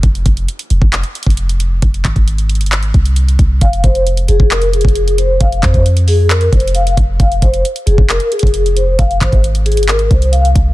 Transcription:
0.03 808-style bass F1, kick, closed hi-hat
0.15 closed hi-hat
0.26 808-style bass F1, kick, closed hi-hat
0.37 closed hi-hat
0.48 closed hi-hat
0.59 closed hi-hat
0.70 808-style bass F1, closed hi-hat
0.82 808-style bass F1, kick
0.93 clap, closed hi-hat
1.03 closed hi-hat
1.15 closed hi-hat
1.23 808-style bass F1, kick, closed hi-hat
1.30 closed hi-hat
1.37 closed hi-hat
1.49 closed hi-hat
1.60 closed hi-hat
1.82 808-style bass F1, kick, closed hi-hat
1.94 closed hi-hat
2.05 808-style bass G#1, kick, clap, closed hi-hat
2.16 kick, closed hi-hat
2.28 closed hi-hat
2.38 closed hi-hat
2.49 closed hi-hat, open hi-hat
2.55 closed hi-hat
2.61 808-style bass G1, closed hi-hat
2.66 closed hi-hat
2.72 clap
2.78 808-style bass G#1
2.83 closed hi-hat
2.94 808-style bass C2, kick, closed hi-hat
3.06 closed hi-hat
3.16 closed hi-hat
3.28 closed hi-hat
3.39 808-style bass C2, kick, closed hi-hat
3.61 808-style bass F1, vibraphone F5, kick, closed hi-hat
3.73 closed hi-hat
3.84 808-style bass F1, vibraphone C5, kick, closed hi-hat
3.95 closed hi-hat
4.07 closed hi-hat
4.17 closed hi-hat
4.28 808-style bass F1, vibraphone G#4, closed hi-hat
4.40 808-style bass F1, kick
4.51 vibraphone A#4, clap, closed hi-hat
4.62 closed hi-hat
4.73 vibraphone G#4, closed hi-hat
4.81 808-style bass F1, kick, closed hi-hat
4.88 closed hi-hat
4.96 closed hi-hat
5.08 closed hi-hat
5.18 vibraphone C5, closed hi-hat
5.40 808-style bass F1, vibraphone F5, kick, closed hi-hat
5.52 closed hi-hat
5.63 808-style bass F2, vibraphone C5, kick, clap, closed hi-hat
5.74 kick, closed hi-hat
5.86 closed hi-hat
5.97 closed hi-hat
6.08 vibraphone G#4, open hi-hat
6.30 vibraphone A#4, clap, closed hi-hat
6.41 closed hi-hat
6.53 808-style bass F1, vibraphone C5, kick, closed hi-hat
6.60 closed hi-hat
6.68 closed hi-hat
6.75 vibraphone F5, closed hi-hat
6.87 closed hi-hat
6.97 808-style bass F1, kick, closed hi-hat
7.20 808-style bass F1, vibraphone F5, kick, closed hi-hat
7.32 closed hi-hat
7.42 808-style bass F1, vibraphone C5, kick, closed hi-hat
7.54 closed hi-hat
7.65 closed hi-hat
7.76 closed hi-hat
7.86 808-style bass F1, vibraphone G#4, closed hi-hat
7.98 808-style bass F1, kick
8.09 vibraphone A#4, clap, closed hi-hat
8.20 closed hi-hat
8.32 vibraphone G#4, closed hi-hat
8.39 808-style bass F1, kick, closed hi-hat
8.47 closed hi-hat
8.54 closed hi-hat
8.66 closed hi-hat
8.77 vibraphone C5, closed hi-hat
8.99 808-style bass F1, vibraphone F5, kick, closed hi-hat
9.11 closed hi-hat
9.21 808-style bass G#1, vibraphone C5, kick, clap, closed hi-hat
9.32 kick, closed hi-hat
9.44 closed hi-hat
9.55 closed hi-hat
9.66 vibraphone G#4, closed hi-hat, open hi-hat
9.72 closed hi-hat
9.77 808-style bass G1, closed hi-hat
9.83 closed hi-hat
9.88 vibraphone A#4, clap, closed hi-hat
9.94 808-style bass G#1
9.99 closed hi-hat
10.11 808-style bass C2, vibraphone C5, kick, closed hi-hat
10.22 closed hi-hat
10.32 vibraphone F5, closed hi-hat
10.45 closed hi-hat
10.56 808-style bass C2, kick, closed hi-hat

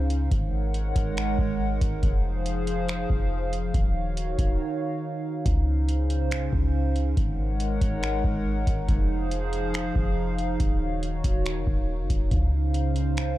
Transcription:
Already playing: 808-style bass C#2, analog synth pad C#3 C#4 D#4 C5 F5
0.10 closed hi-hat
0.31 808-style bass G#1, analog synth pad G#3 A#4 C#5 F#5, kick, closed hi-hat
0.74 closed hi-hat
0.96 808-style bass G#1, kick, closed hi-hat
1.17 finger snap, closed hi-hat
1.38 808-style bass G#1, kick
1.81 808-style bass G#1, kick, closed hi-hat
2.03 808-style bass F1, analog synth pad F3 G#4 C5 F5, kick, closed hi-hat
2.46 closed hi-hat
2.67 closed hi-hat
2.89 finger snap, closed hi-hat
3.10 808-style bass F1, kick
3.53 closed hi-hat
3.74 808-style bass D#1, analog synth pad D#3 D#4 F#4 C#5, kick, closed hi-hat
4.17 closed hi-hat
4.39 808-style bass D#1, kick, closed hi-hat
5.46 808-style bass C#2, analog synth pad C#3 C#4 C5, kick, closed hi-hat
5.89 closed hi-hat
6.10 closed hi-hat
6.31 finger snap, closed hi-hat
6.53 808-style bass C#2, kick
6.96 closed hi-hat
7.17 808-style bass G#1, analog synth pad G#3 D#4 A#4 C#5 F#5, kick, closed hi-hat
7.60 closed hi-hat
7.81 808-style bass G#1, kick, closed hi-hat
8.03 finger snap, closed hi-hat
8.24 808-style bass G#1, kick
8.67 808-style bass G#1, kick, closed hi-hat
8.89 808-style bass F1, analog synth pad F3 G#4 C5 F5, kick, closed hi-hat
9.31 closed hi-hat
9.53 closed hi-hat
9.74 finger snap, closed hi-hat
9.96 808-style bass F1, kick
10.38 closed hi-hat
10.60 808-style bass D#1, analog synth pad D#3 F#4 C#5, kick, closed hi-hat
11.03 closed hi-hat
11.24 808-style bass D#1, kick, closed hi-hat
11.46 finger snap, closed hi-hat
11.56 808-style bass F1
11.67 808-style bass D#1, kick
11.99 808-style bass F#1
12.10 808-style bass D#1, kick, closed hi-hat
12.31 808-style bass C#2, analog synth pad C#3 C#4 C5 F5, kick, closed hi-hat
12.74 closed hi-hat
12.96 closed hi-hat
13.17 finger snap, closed hi-hat

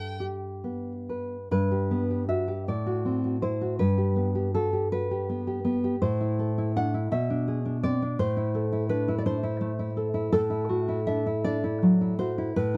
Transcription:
Already playing: nylon-string guitar G2 A4, violin G5
0.20 nylon-string guitar G4
0.64 nylon-string guitar B3
1.09 nylon-string guitar B4
1.51 nylon-string guitar G2 B4
1.71 nylon-string guitar G4
1.91 nylon-string guitar B3
2.10 nylon-string guitar G4
2.29 nylon-string guitar F#4 E5
2.48 nylon-string guitar G4
2.68 nylon-string guitar A2 D5
2.86 nylon-string guitar F#4
3.05 nylon-string guitar C4
3.24 nylon-string guitar F#4
3.42 nylon-string guitar E4 C5
3.61 nylon-string guitar F#4
3.79 nylon-string guitar G2 B4
3.98 nylon-string guitar G4
4.16 nylon-string guitar B3
4.35 nylon-string guitar G4
4.55 nylon-string guitar F#4 A4
4.73 nylon-string guitar G4
4.92 nylon-string guitar F#4 B4
5.11 nylon-string guitar G4
5.29 nylon-string guitar B3
5.47 nylon-string guitar G4
5.65 nylon-string guitar B3
5.84 nylon-string guitar G4
6.02 nylon-string guitar A2 C5
6.21 nylon-string guitar E4
6.39 nylon-string guitar A4
6.58 nylon-string guitar E4
6.76 nylon-string guitar D4 F#5
6.94 nylon-string guitar E4
7.11 nylon-string guitar B2 E5
7.30 nylon-string guitar D4
7.48 nylon-string guitar G#4
7.65 nylon-string guitar D4
7.83 nylon-string guitar C4 D5
8.02 nylon-string guitar D4
8.19 nylon-string guitar A2 C5
8.37 nylon-string guitar E4
8.55 nylon-string guitar A4
8.72 nylon-string guitar E4
8.89 nylon-string guitar D4 B4
9.08 nylon-string guitar E4
9.18 nylon-string guitar D5
9.26 nylon-string guitar D4 C5
9.43 nylon-string guitar E4
9.61 nylon-string guitar A3
9.79 nylon-string guitar E4
9.97 nylon-string guitar A4
10.14 nylon-string guitar E4
10.32 nylon-string guitar A2 A4
10.50 nylon-string guitar E4
10.69 nylon-string guitar F#4
10.88 nylon-string guitar E4
11.07 nylon-string guitar D4 E5
11.26 nylon-string guitar E4
11.44 nylon-string guitar D4 D5
11.64 nylon-string guitar E4
11.83 nylon-string guitar F#3
12.01 nylon-string guitar E4
12.19 nylon-string guitar F#4 C5
12.38 nylon-string guitar E4
12.56 nylon-string guitar A2 B4

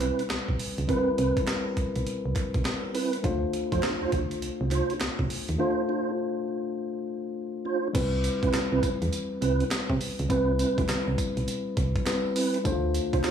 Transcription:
Already playing: fm bass B1, tine electric piano G3 C4 E4 B4
0.00 tonewheel organ C4 E4 B4, clap, closed hi-hat
0.19 closed hi-hat
0.30 fm bass B1, snare, clap, closed hi-hat
0.48 fm bass B1, kick
0.59 open hi-hat
0.78 fm bass C#2, closed hi-hat
0.88 tine electric piano G3 C4 E4 A#4, tonewheel organ C4 E4 B4, kick, closed hi-hat
0.97 tine electric piano B4
1.18 fm bass C2, tonewheel organ C4 E4 B4, closed hi-hat
1.37 kick, closed hi-hat
1.47 snare, clap, closed hi-hat
1.77 fm bass B1, kick, closed hi-hat
1.96 fm bass B1, closed hi-hat
2.07 closed hi-hat
2.26 fm bass C2
2.36 kick, clap, closed hi-hat
2.54 fm bass B1, kick, closed hi-hat
2.65 snare, clap, closed hi-hat
2.94 tonewheel organ C4 E4 B4, open hi-hat
3.13 closed hi-hat
3.23 fm bass D2, tine electric piano A3 D4 F4 C5, kick, closed hi-hat
3.53 closed hi-hat
3.72 fm bass F2, tonewheel organ D4 F4 C5, kick, closed hi-hat
3.83 snare, clap, closed hi-hat
4.01 fm bass D2, tonewheel organ D4 F4 C5
4.12 fm bass D2, kick, closed hi-hat
4.31 closed hi-hat
4.42 fm bass C2, closed hi-hat
4.61 fm bass C2
4.71 tonewheel organ D4 F4 C5, clap, closed hi-hat
4.90 closed hi-hat
5.00 fm bass C2, snare, clap, closed hi-hat
5.19 fm bass C2, kick
5.30 open hi-hat
5.49 fm bass D#2, closed hi-hat
5.58 tine electric piano A3 D4 F4 C5, tonewheel organ D4 F4 C5
5.89 tonewheel organ D4 F4 C5
7.65 tonewheel organ D4 F4 C5
7.93 fm bass C2, tine electric piano G3 C4 E4 B4, kick, closed hi-hat, crash, tambourine
8.24 closed hi-hat, tambourine
8.43 fm bass B1, tonewheel organ C4 E4 B4, kick, closed hi-hat
8.53 fm bass C2, snare, clap, closed hi-hat, tambourine
8.72 fm bass C2, tonewheel organ C4 E4 B4
8.83 kick, closed hi-hat, tambourine
9.02 fm bass E2, closed hi-hat
9.13 closed hi-hat, tambourine
9.41 fm bass C2, tonewheel organ C4 E4 B4, closed hi-hat
9.60 closed hi-hat
9.71 snare, clap, closed hi-hat, tambourine
9.90 fm bass C3, kick
10.01 open hi-hat, tambourine
10.19 fm bass C#2, closed hi-hat
10.29 fm bass C2, tine electric piano G3 C4 E4 B4, tonewheel organ C4 E4 B4, kick, closed hi-hat, tambourine
10.59 tonewheel organ C4 E4 B4, closed hi-hat, tambourine
10.78 fm bass D2, kick, closed hi-hat
10.89 fm bass C2, snare, clap, closed hi-hat, tambourine
11.08 fm bass C2
11.18 kick, closed hi-hat, tambourine
11.37 fm bass B1, closed hi-hat
11.48 closed hi-hat, tambourine
11.77 fm bass C2, kick, closed hi-hat
11.96 kick, closed hi-hat
12.06 tine electric piano G3 C4 E4 B4, snare, clap, closed hi-hat, tambourine
12.36 tonewheel organ C4 E4 B4, open hi-hat, tambourine
12.54 closed hi-hat
12.64 fm bass D2, tine electric piano A3 D4 E4 C5, kick, closed hi-hat, tambourine
12.72 tine electric piano F4
12.94 closed hi-hat, tambourine
13.13 fm bass C2, tonewheel organ D4 F4 C5, kick, closed hi-hat
13.24 fm bass D2, snare, clap, closed hi-hat, tambourine

